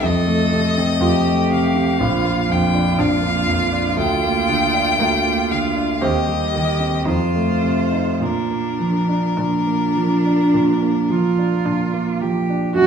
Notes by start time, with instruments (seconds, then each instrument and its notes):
0.00 grand piano F2, cello A4, violin D#5
0.27 grand piano A3
0.53 grand piano C3
0.77 grand piano C4
0.99 grand piano F2, viola F4, cello G4
1.26 grand piano A3
1.51 grand piano C3, violin F5
1.76 grand piano C4
1.99 grand piano A#1, cello F4
2.24 grand piano A#3
2.48 grand piano F2, cello F4, violin G5
2.74 grand piano D4
2.98 grand piano A#1, viola D4, violin F5
3.22 grand piano A#3
3.47 grand piano F2
3.72 grand piano D4
3.97 grand piano D2, violin G5
4.23 grand piano A#3
4.49 grand piano D3
4.73 grand piano D4
4.99 grand piano D2, viola A#3
5.24 grand piano A#3
5.51 grand piano D3, violin F5
5.76 grand piano D4
6.01 grand piano D#2, viola C4, cello G4, violin D#5
6.27 grand piano G3
6.54 grand piano D#3, cello G4
6.80 grand piano C4
7.05 grand piano F2, viola D#4, cello F4, violin C5
7.35 grand piano A3
7.63 grand piano C3
7.91 grand piano D#4
8.20 grand piano A#2, cello D4, violin A#4
8.51 grand piano A#3
8.80 grand piano F3
9.09 grand piano D4
9.37 grand piano A#2, viola D4, cello D4
9.67 grand piano A#3
9.96 grand piano F3
10.26 grand piano D4
10.54 grand piano A#2
10.82 grand piano A#3
11.10 grand piano F3, cello F4
11.38 grand piano D4
11.65 grand piano A#2, viola D4
11.94 grand piano A#3
12.21 grand piano F3, cello G4
12.49 grand piano D4
12.75 grand piano F#2, cello F#3, viola F#4, violin F#5